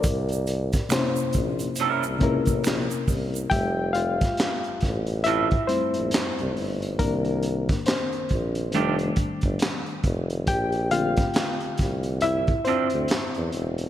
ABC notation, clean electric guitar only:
X:1
M:4/4
L:1/16
Q:"Swing 16ths" 1/4=69
K:F
V:1 name="Clean electric guitar"
z8 [G,_DEB] z6 z | z8 [F,CEA]2 z6 | z8 [_E,A,DG]2 z6 | z8 z2 [F,CDA]2 z4 |]